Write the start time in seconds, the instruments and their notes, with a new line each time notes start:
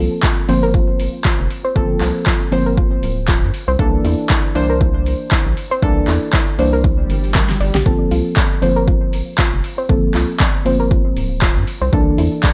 Already playing: synth stab F3 A#3 C4 A4
0.23 synth arpeggio sound F4, kick, clap
0.48 analog synth bass G1, synth stab F3 A#3 C4 C5, open hi-hat
0.63 synth arpeggio sound A#4
0.74 synth arpeggio sound F4, kick
1.00 open hi-hat
1.25 synth arpeggio sound F4, kick, clap
1.39 analog synth bass F1
1.50 open hi-hat
1.65 synth arpeggio sound C5
1.75 analog synth bass G1, synth stab F3 A#3 C4 A4, kick
2.01 analog synth bass C2, synth arpeggio sound F4, clap, open hi-hat
2.26 synth arpeggio sound F4, kick, clap
2.52 analog synth bass G1, synth stab F3 A#3 C4 C5, open hi-hat
2.66 synth arpeggio sound A#4
2.77 synth arpeggio sound F4, kick
3.03 analog synth bass D1, open hi-hat
3.28 synth arpeggio sound F4, kick, clap
3.42 analog synth bass G2
3.54 open hi-hat
3.68 analog synth bass C2, synth arpeggio sound C5
3.79 analog synth bass C2, synth stab E3 A#3 D4 A4, kick
4.05 analog synth bass E2, synth arpeggio sound E4, open hi-hat
4.30 synth arpeggio sound E4, kick, clap
4.55 analog synth bass C2, synth stab E3 A#3 D4 C5, open hi-hat
4.70 synth arpeggio sound A#4
4.81 synth arpeggio sound E4, kick
5.06 open hi-hat
5.31 synth arpeggio sound E4, kick, clap
5.46 analog synth bass A#1
5.57 open hi-hat
5.71 synth arpeggio sound C5
5.82 analog synth bass C2, synth stab E3 A#3 D4 A4, kick
6.08 analog synth bass E2, synth arpeggio sound E4, clap, open hi-hat
6.33 synth arpeggio sound E4, kick, clap
6.58 analog synth bass C2, synth stab E3 A#3 D4 C5, open hi-hat
6.73 synth arpeggio sound A#4
6.84 synth arpeggio sound E4, kick, swell
7.10 analog synth bass G1, open hi-hat
7.24 open hi-hat
7.35 synth arpeggio sound A#4, kick, snare, clap
7.49 snare
7.60 analog synth bass G1, synth arpeggio sound D5, open hi-hat
7.75 analog synth bass A#1, synth arpeggio sound G4, snare
7.85 analog synth bass G1, synth stab F3 A#3 C4 A4, kick
8.11 analog synth bass C2, synth arpeggio sound F4, open hi-hat
8.36 synth arpeggio sound D5, kick, clap
8.62 analog synth bass G1, synth stab F3 A#3 C4 C5, open hi-hat
8.76 synth arpeggio sound A#4
8.88 synth arpeggio sound F4, kick
9.13 open hi-hat
9.38 synth arpeggio sound F4, kick, clap
9.53 analog synth bass F1
9.64 open hi-hat
9.78 synth arpeggio sound C5
9.89 analog synth bass G1, synth stab F3 A#3 C4 A4, kick
10.14 analog synth bass C2, synth arpeggio sound F4, clap, open hi-hat
10.40 synth arpeggio sound D5, kick, clap
10.65 analog synth bass G1, synth stab F3 A#3 C4 C5, open hi-hat
10.80 synth arpeggio sound A#4
10.91 synth arpeggio sound F4, kick
11.16 analog synth bass D1, open hi-hat
11.42 synth arpeggio sound F4, kick, clap
11.56 analog synth bass G2
11.67 open hi-hat
11.81 analog synth bass C2, synth arpeggio sound C5
11.92 analog synth bass C2, synth stab E3 A#3 D4 A4, kick
12.18 analog synth bass E2, synth arpeggio sound E4, open hi-hat
12.43 synth arpeggio sound D5, kick, clap